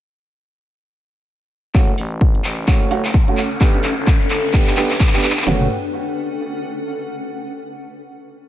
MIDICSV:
0, 0, Header, 1, 6, 480
1, 0, Start_track
1, 0, Tempo, 465116
1, 1802, Time_signature, 4, 2, 24, 8
1, 8755, End_track
2, 0, Start_track
2, 0, Title_t, "Ambient pad"
2, 0, Program_c, 0, 92
2, 1802, Note_on_c, 0, 61, 78
2, 2442, Note_on_c, 0, 69, 83
2, 2581, Note_on_c, 0, 78, 74
2, 3721, Note_on_c, 0, 62, 88
2, 3722, Note_off_c, 0, 61, 0
2, 3722, Note_off_c, 0, 78, 0
2, 3910, Note_on_c, 0, 71, 74
2, 4498, Note_off_c, 0, 69, 0
2, 4603, Note_on_c, 0, 79, 87
2, 5641, Note_off_c, 0, 71, 0
2, 5641, Note_off_c, 0, 79, 0
2, 5642, Note_off_c, 0, 62, 0
2, 5642, Note_on_c, 0, 61, 82
2, 5725, Note_on_c, 0, 69, 82
2, 5802, Note_on_c, 0, 78, 79
2, 7520, Note_off_c, 0, 61, 0
2, 7520, Note_off_c, 0, 69, 0
2, 7520, Note_off_c, 0, 78, 0
2, 8755, End_track
3, 0, Start_track
3, 0, Title_t, "Grand piano"
3, 0, Program_c, 1, 0
3, 1802, Note_on_c, 1, 57, 76
3, 1802, Note_on_c, 1, 61, 72
3, 1802, Note_on_c, 1, 66, 85
3, 1947, Note_off_c, 1, 57, 0
3, 1947, Note_off_c, 1, 61, 0
3, 1947, Note_off_c, 1, 66, 0
3, 2761, Note_on_c, 1, 57, 73
3, 2761, Note_on_c, 1, 61, 69
3, 2761, Note_on_c, 1, 66, 81
3, 2978, Note_off_c, 1, 57, 0
3, 2978, Note_off_c, 1, 61, 0
3, 2978, Note_off_c, 1, 66, 0
3, 3001, Note_on_c, 1, 57, 95
3, 3001, Note_on_c, 1, 61, 83
3, 3001, Note_on_c, 1, 66, 106
3, 3093, Note_off_c, 1, 57, 0
3, 3093, Note_off_c, 1, 61, 0
3, 3093, Note_off_c, 1, 66, 0
3, 3383, Note_on_c, 1, 61, 72
3, 3384, Note_on_c, 1, 57, 76
3, 3384, Note_on_c, 1, 66, 85
3, 3487, Note_off_c, 1, 57, 0
3, 3487, Note_off_c, 1, 61, 0
3, 3487, Note_off_c, 1, 66, 0
3, 3721, Note_on_c, 1, 59, 80
3, 3721, Note_on_c, 1, 67, 88
3, 3722, Note_on_c, 1, 62, 73
3, 3867, Note_off_c, 1, 59, 0
3, 3867, Note_off_c, 1, 62, 0
3, 3867, Note_off_c, 1, 67, 0
3, 4681, Note_on_c, 1, 59, 73
3, 4681, Note_on_c, 1, 62, 69
3, 4681, Note_on_c, 1, 67, 83
3, 4898, Note_off_c, 1, 59, 0
3, 4898, Note_off_c, 1, 62, 0
3, 4898, Note_off_c, 1, 67, 0
3, 4921, Note_on_c, 1, 59, 94
3, 4921, Note_on_c, 1, 62, 86
3, 4922, Note_on_c, 1, 67, 105
3, 5013, Note_off_c, 1, 59, 0
3, 5013, Note_off_c, 1, 62, 0
3, 5013, Note_off_c, 1, 67, 0
3, 5303, Note_on_c, 1, 59, 81
3, 5303, Note_on_c, 1, 62, 71
3, 5303, Note_on_c, 1, 67, 87
3, 5407, Note_off_c, 1, 59, 0
3, 5407, Note_off_c, 1, 62, 0
3, 5407, Note_off_c, 1, 67, 0
3, 5641, Note_on_c, 1, 57, 89
3, 5641, Note_on_c, 1, 61, 76
3, 5641, Note_on_c, 1, 66, 96
3, 5828, Note_off_c, 1, 57, 0
3, 5828, Note_off_c, 1, 61, 0
3, 5828, Note_off_c, 1, 66, 0
3, 8755, End_track
4, 0, Start_track
4, 0, Title_t, "FM bass"
4, 0, Program_c, 2, 39
4, 1802, Note_on_c, 2, 30, 94
4, 2026, Note_off_c, 2, 30, 0
4, 2042, Note_on_c, 2, 33, 100
4, 2506, Note_off_c, 2, 33, 0
4, 2521, Note_on_c, 2, 33, 92
4, 2746, Note_off_c, 2, 33, 0
4, 3002, Note_on_c, 2, 30, 91
4, 3226, Note_off_c, 2, 30, 0
4, 3722, Note_on_c, 2, 35, 97
4, 4081, Note_off_c, 2, 35, 0
4, 4103, Note_on_c, 2, 31, 99
4, 4426, Note_off_c, 2, 31, 0
4, 4441, Note_on_c, 2, 31, 95
4, 4801, Note_off_c, 2, 31, 0
4, 4824, Note_on_c, 2, 35, 102
4, 5146, Note_off_c, 2, 35, 0
4, 5641, Note_on_c, 2, 30, 98
4, 5865, Note_off_c, 2, 30, 0
4, 8755, End_track
5, 0, Start_track
5, 0, Title_t, "Riser"
5, 0, Program_c, 3, 103
5, 1801, Note_on_c, 3, 60, 77
5, 5642, Note_off_c, 3, 60, 0
5, 8755, End_track
6, 0, Start_track
6, 0, Title_t, "Drums"
6, 1802, Note_on_c, 9, 36, 115
6, 1802, Note_on_c, 9, 39, 48
6, 1802, Note_on_c, 9, 42, 82
6, 1905, Note_off_c, 9, 36, 0
6, 1905, Note_off_c, 9, 39, 0
6, 1905, Note_off_c, 9, 42, 0
6, 1944, Note_on_c, 9, 42, 54
6, 2042, Note_on_c, 9, 46, 103
6, 2047, Note_off_c, 9, 42, 0
6, 2145, Note_off_c, 9, 46, 0
6, 2184, Note_on_c, 9, 42, 36
6, 2282, Note_off_c, 9, 42, 0
6, 2282, Note_on_c, 9, 36, 115
6, 2282, Note_on_c, 9, 42, 79
6, 2385, Note_off_c, 9, 36, 0
6, 2385, Note_off_c, 9, 42, 0
6, 2424, Note_on_c, 9, 42, 51
6, 2522, Note_on_c, 9, 39, 54
6, 2522, Note_on_c, 9, 46, 102
6, 2527, Note_off_c, 9, 42, 0
6, 2625, Note_off_c, 9, 39, 0
6, 2625, Note_off_c, 9, 46, 0
6, 2762, Note_on_c, 9, 36, 117
6, 2762, Note_on_c, 9, 39, 60
6, 2762, Note_on_c, 9, 42, 80
6, 2865, Note_off_c, 9, 36, 0
6, 2865, Note_off_c, 9, 39, 0
6, 2865, Note_off_c, 9, 42, 0
6, 2904, Note_on_c, 9, 42, 54
6, 3002, Note_on_c, 9, 46, 111
6, 3007, Note_off_c, 9, 42, 0
6, 3105, Note_off_c, 9, 46, 0
6, 3144, Note_on_c, 9, 39, 58
6, 3144, Note_on_c, 9, 42, 38
6, 3242, Note_off_c, 9, 42, 0
6, 3242, Note_on_c, 9, 36, 118
6, 3242, Note_on_c, 9, 42, 78
6, 3247, Note_off_c, 9, 39, 0
6, 3345, Note_off_c, 9, 36, 0
6, 3345, Note_off_c, 9, 42, 0
6, 3384, Note_on_c, 9, 42, 56
6, 3482, Note_on_c, 9, 39, 68
6, 3482, Note_on_c, 9, 46, 106
6, 3487, Note_off_c, 9, 42, 0
6, 3585, Note_off_c, 9, 39, 0
6, 3585, Note_off_c, 9, 46, 0
6, 3624, Note_on_c, 9, 42, 37
6, 3721, Note_off_c, 9, 42, 0
6, 3721, Note_on_c, 9, 36, 120
6, 3721, Note_on_c, 9, 39, 73
6, 3721, Note_on_c, 9, 42, 79
6, 3824, Note_off_c, 9, 39, 0
6, 3824, Note_off_c, 9, 42, 0
6, 3825, Note_off_c, 9, 36, 0
6, 3863, Note_on_c, 9, 42, 54
6, 3961, Note_on_c, 9, 39, 78
6, 3961, Note_on_c, 9, 46, 112
6, 3966, Note_off_c, 9, 42, 0
6, 4065, Note_off_c, 9, 39, 0
6, 4065, Note_off_c, 9, 46, 0
6, 4103, Note_on_c, 9, 42, 37
6, 4201, Note_off_c, 9, 42, 0
6, 4201, Note_on_c, 9, 36, 120
6, 4201, Note_on_c, 9, 39, 78
6, 4201, Note_on_c, 9, 42, 82
6, 4305, Note_off_c, 9, 36, 0
6, 4305, Note_off_c, 9, 39, 0
6, 4305, Note_off_c, 9, 42, 0
6, 4343, Note_on_c, 9, 46, 66
6, 4441, Note_off_c, 9, 46, 0
6, 4441, Note_on_c, 9, 39, 91
6, 4441, Note_on_c, 9, 46, 111
6, 4544, Note_off_c, 9, 39, 0
6, 4544, Note_off_c, 9, 46, 0
6, 4681, Note_on_c, 9, 36, 125
6, 4681, Note_on_c, 9, 39, 92
6, 4681, Note_on_c, 9, 42, 79
6, 4784, Note_off_c, 9, 39, 0
6, 4784, Note_off_c, 9, 42, 0
6, 4785, Note_off_c, 9, 36, 0
6, 4824, Note_on_c, 9, 39, 81
6, 4824, Note_on_c, 9, 42, 52
6, 4921, Note_off_c, 9, 39, 0
6, 4921, Note_on_c, 9, 39, 101
6, 4921, Note_on_c, 9, 46, 114
6, 4927, Note_off_c, 9, 42, 0
6, 5025, Note_off_c, 9, 39, 0
6, 5025, Note_off_c, 9, 46, 0
6, 5064, Note_on_c, 9, 39, 90
6, 5064, Note_on_c, 9, 42, 39
6, 5161, Note_off_c, 9, 39, 0
6, 5161, Note_on_c, 9, 36, 125
6, 5161, Note_on_c, 9, 39, 99
6, 5161, Note_on_c, 9, 46, 64
6, 5167, Note_off_c, 9, 42, 0
6, 5232, Note_off_c, 9, 39, 0
6, 5232, Note_on_c, 9, 39, 86
6, 5265, Note_off_c, 9, 36, 0
6, 5265, Note_off_c, 9, 46, 0
6, 5304, Note_off_c, 9, 39, 0
6, 5304, Note_on_c, 9, 39, 95
6, 5304, Note_on_c, 9, 42, 54
6, 5353, Note_off_c, 9, 39, 0
6, 5353, Note_on_c, 9, 39, 89
6, 5402, Note_off_c, 9, 39, 0
6, 5402, Note_on_c, 9, 39, 109
6, 5402, Note_on_c, 9, 46, 112
6, 5407, Note_off_c, 9, 42, 0
6, 5473, Note_off_c, 9, 39, 0
6, 5473, Note_on_c, 9, 39, 96
6, 5505, Note_off_c, 9, 46, 0
6, 5544, Note_off_c, 9, 39, 0
6, 5544, Note_on_c, 9, 39, 88
6, 5544, Note_on_c, 9, 42, 36
6, 5592, Note_off_c, 9, 39, 0
6, 5592, Note_on_c, 9, 39, 95
6, 5642, Note_on_c, 9, 38, 104
6, 5642, Note_on_c, 9, 43, 104
6, 5647, Note_off_c, 9, 42, 0
6, 5696, Note_off_c, 9, 39, 0
6, 5745, Note_off_c, 9, 38, 0
6, 5745, Note_off_c, 9, 43, 0
6, 8755, End_track
0, 0, End_of_file